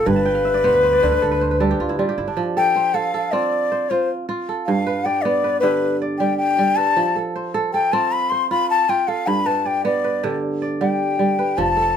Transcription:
Already playing: C4 F4 A4 C5
0.06 G1 G2 B4
0.16 A5
0.26 G5
0.35 F5
0.45 E5
0.54 D5
0.64 D2 B3 C5
0.74 B4
0.83 C5
0.93 D5
1.03 D2 D3 C5
1.12 B4
1.22 D2 A4
1.31 B4
1.41 C5
1.51 B4
1.60 G3 A4
1.71 G4
1.80 D2 F4
1.89 E4
1.99 G3 F4
2.09 G4
2.18 G1 E4
2.28 D4
2.37 F3
2.57 A4 G5
2.76 C5
2.94 A4 F5
3.14 A4
3.32 C4 F4 D5
3.72 C5
3.90 F4 C5
4.29 F4
4.49 A4
4.66 G2 F5
4.87 B4
5.05 D5 G5
5.22 B3 D5
5.44 B4
5.60 D3 G4 B4
6.02 D5
6.18 G3 G5
6.38 G5
6.58 G3
6.76 B4 A5
6.96 F3
7.16 A4
7.36 C5
7.54 A4
7.73 A4 G5
7.93 C4 F4 A5
8.12 B5
8.30 C5 C6
8.51 F4 B5
8.70 A5
8.89 F4 G5
9.08 A4 F5
9.27 G2 B5
9.46 B4 A5
9.65 D5 G5
9.85 B3 D5
10.04 B4
10.23 D3 G4
10.62 D5
10.81 G3 G5
11.19 G3
11.39 B4
11.58 F1 F3 A5
11.77 A4

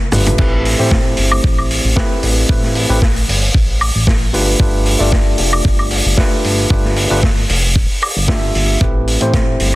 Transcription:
0.12 G1 A3 D4 F4 G4 B4, mid tom, open hi-hat, shaker
0.26 closed hi-hat, mid tom, shaker
0.38 A1 A3 C4 E4 G4 B4, kick, crash
0.65 open hi-hat
0.78 A1 A3 C4 E4 G4 C5
0.91 kick, snare
1.17 G1, open hi-hat
1.32 high woodblock
1.44 A1, kick
1.58 high woodblock
1.70 open hi-hat
1.84 A1
1.96 A3 C4 E4 G4 B4, kick, snare
2.23 A1, open hi-hat
2.49 A1 A3 C4 E4 G4 B4, kick
2.63 snare
2.75 open hi-hat
2.89 A1 A3 C4 E4 G4 B4
3.02 kick, snare
3.16 open hi-hat
3.28 G1, open hi-hat
3.54 A1, kick
3.81 open hi-hat, high woodblock
3.95 A1
4.07 kick, snare
4.33 G1 A3 D4 F4 G4 B4, open hi-hat
4.59 G1 A3 D4 F4 G4 B4, kick
4.85 open hi-hat
4.99 G1 A3 D4 F4 G4 D5
5.12 kick, snare
5.38 F1, open hi-hat
5.53 high woodblock
5.65 G1, kick
5.79 high woodblock
5.90 open hi-hat
6.06 G1
6.17 A3 D4 F4 G4 B4, kick, snare
6.44 G1, open hi-hat
6.70 G1 A3 D4 F4 G4 B4, kick
6.85 snare
6.96 open hi-hat
7.10 G1 A3 D4 F4 G4 B4
7.23 kick, snare
7.37 open hi-hat
7.49 F1, open hi-hat
7.76 D1, kick
8.02 open hi-hat, high woodblock
8.16 G1
8.28 A3 D4 F4 G4 E5, kick, snare
8.55 G1, open hi-hat
8.80 A1 A3 C4 E4 G4 B4, kick, closed hi-hat
9.07 open hi-hat
9.20 A1 A3 C4 E4 G4 C5, closed hi-hat
9.34 kick, snare, closed hi-hat
9.60 G1, open hi-hat

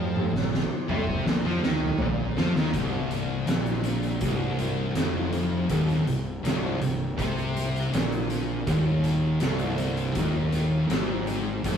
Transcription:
Already playing: F2 F3
0.16 high tom
0.32 A#1 A#2, snare
0.54 snare
0.88 C2 C3, mid tom
1.07 kick
1.25 A#1 A#2, snare
1.44 F2 F3
1.62 D#2 D#3, snare
1.80 mid tom
1.98 A#1 A#2, floor tom
2.37 F2 F3, snare
2.55 D#2 D#3, snare
2.74 C1 C2, kick, closed hi-hat
3.11 closed hi-hat
3.47 A#1 A#2, snare, closed hi-hat
3.66 closed hi-hat
3.84 closed hi-hat
4.03 closed hi-hat
4.21 C1 C2, kick, closed hi-hat
4.59 closed hi-hat
4.94 F1 F2, snare, closed hi-hat
5.33 closed hi-hat
5.70 D#1 D#2, kick, closed hi-hat
5.89 snare, closed hi-hat
6.06 C1 C2, closed hi-hat
6.43 C1 C2, snare, closed hi-hat
6.80 C1 C2, closed hi-hat
7.17 C2 C3, kick, closed hi-hat
7.38 closed hi-hat
7.57 closed hi-hat
7.76 closed hi-hat
7.92 A#1 A#2, snare, closed hi-hat
8.12 closed hi-hat
8.30 closed hi-hat
8.67 D#1 D#2, kick, closed hi-hat
9.04 closed hi-hat
9.40 C1 C2, snare, closed hi-hat
9.59 closed hi-hat
9.78 closed hi-hat
9.97 closed hi-hat
10.15 D#1 D#2, kick, closed hi-hat
10.52 closed hi-hat
10.90 G#1 G#2, snare, closed hi-hat
11.27 closed hi-hat
11.64 F1 F2, kick, closed hi-hat

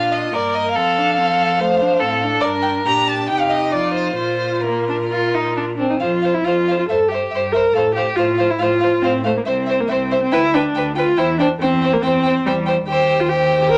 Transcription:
Already playing: A#2 D4 F4 F5
0.12 D#5
0.33 G2 A#3 A#4 D5
0.55 D#5
0.74 F2 C4 A4 F5
0.98 D4
1.17 C4 A4
1.60 A3 C5
1.81 D4
1.99 A2 C4 A4
2.23 D4
2.41 G2 A#4 D5
2.62 G5
2.86 A#2 D4 G4 A#5
3.08 A5
3.28 C3 D#4 G4 G5
3.40 F5
3.50 D#5
3.72 F2 F4 D5
3.94 C5
4.15 A#2 F4 C5
4.20 F4
4.61 A#4
4.66 A#3
4.89 D4
5.12 F4
5.34 D#4
5.57 D4
5.77 C4 D4
5.90 D#4
6.00 F2 F4 C5 F5
6.22 C5 F5
6.34 E4
6.44 F2 F4 C5 F5
6.68 C5 F5
6.79 F4
6.88 G2 A4 C5 E5
7.08 G4 E5
7.14 C5
7.31 G2 E5
7.35 C5
7.52 A#4 C5 E5
7.74 A2 A4 C5 F5
7.95 G4 C5 F5
8.16 A2 F4 C5 F5
8.38 C5 F5
8.50 E4
8.59 A2 F4 C5 F5
8.80 C5 F5
9.02 A2 C4 C5 F5
9.24 A3 C5 F5
9.37 A#3
9.45 C2 C4 C5 E5
9.66 C5 E5
9.80 A#3
9.88 C2 C4 C5 E5
10.11 C5 E5
10.23 C4
10.32 D2 E4 B4 G5
10.54 D4 B4 G5
10.75 D2 B4 G5
10.96 F4 B4 G5
11.17 E2 E4 C5 G5
11.39 D4 C5 G5
11.60 E2 C4 C5 G5
11.82 C5 G5
11.93 A#3
12.02 E2 C4 C5 G5
12.23 C5 G5
12.45 E2 G3 C5 G5
12.66 C5 G5
12.87 D#2 G4 C5 G5
13.20 F4
13.29 G4 C5 G5
13.61 G4
13.72 A#4

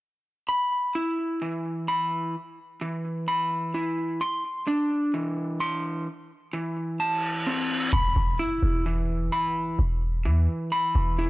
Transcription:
0.49 B5
0.95 E4
1.42 E3
1.88 B5
2.81 E3
3.28 B5
3.74 E4
4.21 C6
4.67 D4
5.14 E3
5.60 C6
6.53 E3
7.00 A5, reverse cymbal
7.46 C4
7.93 E1 B5, impact
8.16 E1
8.39 E4
8.63 E1
8.86 E3
9.32 B5
9.79 E1
10.25 E2 E3
10.72 B5
10.95 E1
11.18 E4

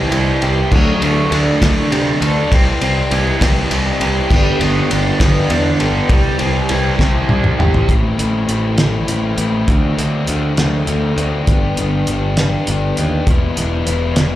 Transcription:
Already playing: C3 E3 G3 C4 E4 G4
0.11 C2 E4, ride
0.41 C2 G3 E4 G4, ride
0.71 D2 D3 F#3 A3 D4 F#4, kick, crash
0.99 D2 A3 D4 F#4, ride
1.29 D2 F#3 A3 D4 F#4, ride
1.61 D2 D3 F#3 A3 D4 F#4, kick, snare, ride
1.92 C3 D4, ride
2.21 D2 A3 D4 F#4 A4, ride
2.51 C2 C3 E3 G3 C4 E4 G4, kick, ride
2.81 C2 G3 C4 E4 G4, ride
3.11 C2 E3 G3 E4 G4, ride
3.40 C2 C3 E3 G3 C4 E4 G4, kick, snare, ride
3.70 C2 E4, ride
4.00 C2 G3 E4 G4, ride
4.30 G1 G2 D3 G3 B3 D4 G4, kick, crash
4.59 G1 G3 B3 D4 G4, ride
4.89 G1 G3 B3 D4 G4, ride
5.19 G1 G2 D3 G3 B3 D4 G4, kick, snare, ride
5.50 E2 D4, ride
5.80 G1 G3 B3 D4 G4 A4, ride
6.09 C2 C3 G3 C4 E4 G4, kick, ride
6.38 C2 C4 E4 G4, ride
6.69 C2 G3 C4 E4 G4, ride
6.98 C2 C3 G3 C4 E4 G4, kick, snare
7.29 C2 E4, high tom
7.44 mid tom
7.58 G#1 C4 E4 G4, mid tom
7.74 floor tom
7.88 A1 A2 E3 A3 C4 E4, kick, closed hi-hat
8.18 A1 A2 E3 A3 C4 E4, closed hi-hat
8.48 A1 A2 E3 A3 C4 E4, closed hi-hat
8.77 A2 E3 A3 C4 E4, snare, closed hi-hat
9.07 A1 A2 E3 A3 C4 E4, closed hi-hat
9.37 A1 A2 E3 A3 C4 E4, closed hi-hat
9.67 D2 D3 A3 C4 F#4, kick, closed hi-hat
9.97 D2 D3 A3 C4 F#4, closed hi-hat
10.27 D2 D3 A3 C4 F#4, closed hi-hat
10.57 D2 D3 A3 C4 F#4, snare, closed hi-hat
10.87 D2 D3 A3 C4 F#4, closed hi-hat
11.17 D2 D3 A3 C4 F#4, closed hi-hat
11.47 G1 G2 D3 G3 B3 D4 G4, kick, closed hi-hat
11.77 G1 G2 D3 G3 B3 D4 G4, closed hi-hat
12.07 G1 G2 D3 G3 B3 D4 G4, closed hi-hat
12.37 G2 D3 G3 B3 D4 G4, snare, closed hi-hat
12.67 G1 G2 D3 G3 B3 D4 G4, closed hi-hat
12.97 D#2 G2 D3 G3 B3 D4 G4, closed hi-hat
13.27 E1 E2 B2 E3 G3 B3 E4, kick, closed hi-hat
13.56 E1 E2 B2 E3 G3 B3 E4, closed hi-hat
13.86 E1 E2 B2 E3 G3 B3 E4, closed hi-hat
14.16 E1 E2 B2 E3 G3 B3 E4, snare, closed hi-hat

